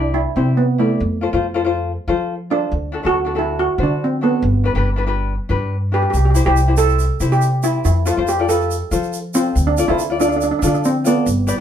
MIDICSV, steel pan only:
0, 0, Header, 1, 2, 480
1, 0, Start_track
1, 0, Tempo, 427960
1, 1129, Time_signature, 4, 2, 24, 8
1, 13013, End_track
2, 0, Start_track
2, 0, Title_t, "Steel pan"
2, 0, Program_c, 0, 114
2, 0, Note_on_c, 0, 62, 68
2, 158, Note_on_c, 0, 64, 81
2, 180, Note_off_c, 0, 62, 0
2, 411, Note_off_c, 0, 64, 0
2, 412, Note_on_c, 0, 60, 71
2, 641, Note_on_c, 0, 59, 72
2, 658, Note_off_c, 0, 60, 0
2, 892, Note_on_c, 0, 57, 68
2, 893, Note_off_c, 0, 59, 0
2, 1337, Note_off_c, 0, 57, 0
2, 2819, Note_on_c, 0, 62, 87
2, 3438, Note_on_c, 0, 66, 87
2, 3439, Note_off_c, 0, 62, 0
2, 3790, Note_off_c, 0, 66, 0
2, 3797, Note_on_c, 0, 64, 73
2, 4030, Note_off_c, 0, 64, 0
2, 4030, Note_on_c, 0, 66, 83
2, 4266, Note_off_c, 0, 66, 0
2, 4296, Note_on_c, 0, 62, 72
2, 4519, Note_off_c, 0, 62, 0
2, 4533, Note_on_c, 0, 60, 69
2, 4750, Note_on_c, 0, 59, 66
2, 4757, Note_off_c, 0, 60, 0
2, 5187, Note_off_c, 0, 59, 0
2, 6662, Note_on_c, 0, 67, 83
2, 6742, Note_off_c, 0, 67, 0
2, 6756, Note_on_c, 0, 67, 58
2, 6829, Note_off_c, 0, 67, 0
2, 6843, Note_on_c, 0, 67, 63
2, 6907, Note_off_c, 0, 67, 0
2, 6921, Note_on_c, 0, 67, 59
2, 7002, Note_off_c, 0, 67, 0
2, 7013, Note_on_c, 0, 67, 65
2, 7058, Note_off_c, 0, 67, 0
2, 7072, Note_on_c, 0, 67, 58
2, 7156, Note_off_c, 0, 67, 0
2, 7247, Note_on_c, 0, 67, 83
2, 7601, Note_on_c, 0, 69, 86
2, 7615, Note_off_c, 0, 67, 0
2, 8212, Note_on_c, 0, 67, 82
2, 8230, Note_off_c, 0, 69, 0
2, 8566, Note_on_c, 0, 64, 78
2, 8577, Note_off_c, 0, 67, 0
2, 8790, Note_off_c, 0, 64, 0
2, 8803, Note_on_c, 0, 64, 76
2, 8913, Note_off_c, 0, 64, 0
2, 9049, Note_on_c, 0, 65, 75
2, 9293, Note_on_c, 0, 67, 78
2, 9296, Note_off_c, 0, 65, 0
2, 9521, Note_on_c, 0, 69, 71
2, 9538, Note_off_c, 0, 67, 0
2, 9971, Note_off_c, 0, 69, 0
2, 10487, Note_on_c, 0, 60, 88
2, 10845, Note_on_c, 0, 62, 82
2, 10865, Note_off_c, 0, 60, 0
2, 11083, Note_on_c, 0, 64, 88
2, 11097, Note_off_c, 0, 62, 0
2, 11445, Note_on_c, 0, 62, 83
2, 11453, Note_off_c, 0, 64, 0
2, 11519, Note_off_c, 0, 62, 0
2, 11533, Note_on_c, 0, 62, 61
2, 11607, Note_off_c, 0, 62, 0
2, 11621, Note_on_c, 0, 62, 67
2, 11688, Note_off_c, 0, 62, 0
2, 11701, Note_on_c, 0, 62, 66
2, 11778, Note_off_c, 0, 62, 0
2, 11791, Note_on_c, 0, 62, 69
2, 11864, Note_off_c, 0, 62, 0
2, 11878, Note_on_c, 0, 62, 60
2, 11948, Note_off_c, 0, 62, 0
2, 11962, Note_on_c, 0, 62, 70
2, 12037, Note_off_c, 0, 62, 0
2, 12051, Note_on_c, 0, 62, 61
2, 12129, Note_off_c, 0, 62, 0
2, 12175, Note_on_c, 0, 60, 83
2, 12416, Note_on_c, 0, 59, 78
2, 12418, Note_off_c, 0, 60, 0
2, 13013, Note_off_c, 0, 59, 0
2, 13013, End_track
0, 0, End_of_file